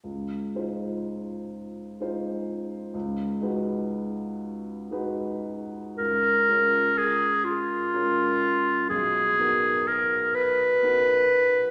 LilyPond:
<<
  \new Staff \with { instrumentName = "Clarinet" } { \time 6/8 \key des \major \tempo 4. = 41 r2. | r2. | bes'4 aes'8 f'4. | aes'4 bes'8 ces''4. | }
  \new Staff \with { instrumentName = "Grand piano" } { \time 6/8 \key des \major des,8 <aes ees' f' c''>4. <aes ees' f' c''>4 | des,8 <aes ees' ges' ces''>4. <aes ees' ges' ces''>4 | des,8 <aes des' f' bes'>4. <aes des' f' bes'>4 | ces,8 <ces' ees' ges' bes'>4. <ces' ees' ges' bes'>4 | }
>>